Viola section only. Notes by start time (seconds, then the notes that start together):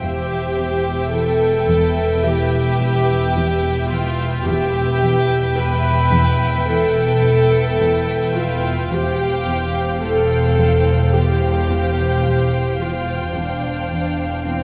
0.01 G4
1.13 A4
2.23 G4
3.89 F4
4.45 G4
5.56 B4
6.67 A4
8.34 F4
8.91 G4
10.01 A4
11.13 G4
12.80 F4
13.35 D4
14.47 C4